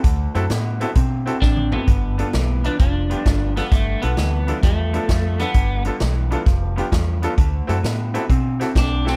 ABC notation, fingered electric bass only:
X:1
M:4/4
L:1/8
Q:"Swing" 1/4=131
K:G
V:1 name="Fingered electric bass" clef=bass
D,, F,, A,,2 B,,2 A,,,2 | G,,,2 B,,,2 =F,,,2 G,,,2 | G,,, B,,, D,,2 E,,2 =F,,2 | G,,,2 B,,,2 =F,,,2 E,,2 |
D,, F,, A,,2 B,,2 B,,,2 |]